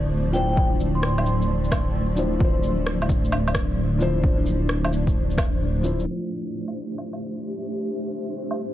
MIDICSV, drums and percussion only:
0, 0, Header, 1, 2, 480
1, 0, Start_track
1, 0, Tempo, 458015
1, 598, Time_signature, 4, 2, 24, 8
1, 9156, End_track
2, 0, Start_track
2, 0, Title_t, "Drums"
2, 361, Note_on_c, 9, 82, 52
2, 465, Note_off_c, 9, 82, 0
2, 601, Note_on_c, 9, 36, 111
2, 706, Note_off_c, 9, 36, 0
2, 840, Note_on_c, 9, 82, 50
2, 945, Note_off_c, 9, 82, 0
2, 1080, Note_on_c, 9, 37, 103
2, 1185, Note_off_c, 9, 37, 0
2, 1238, Note_on_c, 9, 77, 50
2, 1323, Note_on_c, 9, 82, 50
2, 1343, Note_off_c, 9, 77, 0
2, 1428, Note_off_c, 9, 82, 0
2, 1486, Note_on_c, 9, 82, 30
2, 1591, Note_off_c, 9, 82, 0
2, 1721, Note_on_c, 9, 82, 29
2, 1799, Note_on_c, 9, 36, 98
2, 1802, Note_off_c, 9, 82, 0
2, 1802, Note_on_c, 9, 37, 105
2, 1802, Note_on_c, 9, 77, 59
2, 1802, Note_on_c, 9, 82, 53
2, 1904, Note_off_c, 9, 36, 0
2, 1906, Note_off_c, 9, 37, 0
2, 1906, Note_off_c, 9, 77, 0
2, 1906, Note_off_c, 9, 82, 0
2, 2273, Note_on_c, 9, 82, 53
2, 2377, Note_off_c, 9, 82, 0
2, 2520, Note_on_c, 9, 36, 104
2, 2625, Note_off_c, 9, 36, 0
2, 2759, Note_on_c, 9, 82, 51
2, 2864, Note_off_c, 9, 82, 0
2, 3003, Note_on_c, 9, 37, 101
2, 3108, Note_off_c, 9, 37, 0
2, 3164, Note_on_c, 9, 77, 50
2, 3241, Note_on_c, 9, 36, 94
2, 3242, Note_on_c, 9, 82, 54
2, 3269, Note_off_c, 9, 77, 0
2, 3346, Note_off_c, 9, 36, 0
2, 3346, Note_off_c, 9, 82, 0
2, 3402, Note_on_c, 9, 82, 31
2, 3482, Note_on_c, 9, 77, 65
2, 3507, Note_off_c, 9, 82, 0
2, 3587, Note_off_c, 9, 77, 0
2, 3642, Note_on_c, 9, 77, 54
2, 3642, Note_on_c, 9, 82, 28
2, 3716, Note_off_c, 9, 82, 0
2, 3716, Note_on_c, 9, 37, 97
2, 3716, Note_on_c, 9, 82, 54
2, 3721, Note_on_c, 9, 36, 59
2, 3747, Note_off_c, 9, 77, 0
2, 3821, Note_off_c, 9, 37, 0
2, 3821, Note_off_c, 9, 82, 0
2, 3826, Note_off_c, 9, 36, 0
2, 4200, Note_on_c, 9, 82, 54
2, 4305, Note_off_c, 9, 82, 0
2, 4440, Note_on_c, 9, 36, 104
2, 4545, Note_off_c, 9, 36, 0
2, 4676, Note_on_c, 9, 82, 51
2, 4780, Note_off_c, 9, 82, 0
2, 4917, Note_on_c, 9, 37, 95
2, 5022, Note_off_c, 9, 37, 0
2, 5078, Note_on_c, 9, 77, 53
2, 5163, Note_on_c, 9, 82, 54
2, 5183, Note_off_c, 9, 77, 0
2, 5268, Note_off_c, 9, 82, 0
2, 5316, Note_on_c, 9, 36, 59
2, 5323, Note_on_c, 9, 82, 29
2, 5421, Note_off_c, 9, 36, 0
2, 5428, Note_off_c, 9, 82, 0
2, 5562, Note_on_c, 9, 82, 29
2, 5636, Note_on_c, 9, 36, 101
2, 5641, Note_off_c, 9, 82, 0
2, 5641, Note_on_c, 9, 37, 99
2, 5641, Note_on_c, 9, 77, 65
2, 5641, Note_on_c, 9, 82, 55
2, 5741, Note_off_c, 9, 36, 0
2, 5746, Note_off_c, 9, 37, 0
2, 5746, Note_off_c, 9, 77, 0
2, 5746, Note_off_c, 9, 82, 0
2, 6122, Note_on_c, 9, 82, 56
2, 6227, Note_off_c, 9, 82, 0
2, 6283, Note_on_c, 9, 82, 31
2, 6388, Note_off_c, 9, 82, 0
2, 6999, Note_on_c, 9, 77, 45
2, 7103, Note_off_c, 9, 77, 0
2, 7317, Note_on_c, 9, 77, 59
2, 7422, Note_off_c, 9, 77, 0
2, 7473, Note_on_c, 9, 77, 45
2, 7578, Note_off_c, 9, 77, 0
2, 8917, Note_on_c, 9, 77, 45
2, 9022, Note_off_c, 9, 77, 0
2, 9156, End_track
0, 0, End_of_file